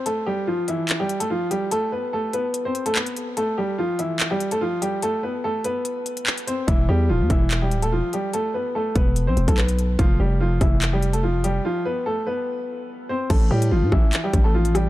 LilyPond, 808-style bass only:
\new Staff \with { instrumentName = "808-style bass" } { \clef bass \time 4/4 \key a \minor \tempo 4 = 145 r1 | r1 | r1 | r1 |
e,,8 e,8 d,,16 e,16 e,,4 d,,16. e,,16. r8. | r4. e,,8. b,,16 e,,16 b,,4~ b,,16 | f,,8 f,,4 f,,2~ f,,8 | r1 |
a,,8 a,8 g,,16 a,16 a,,8 r8 a,,4. | }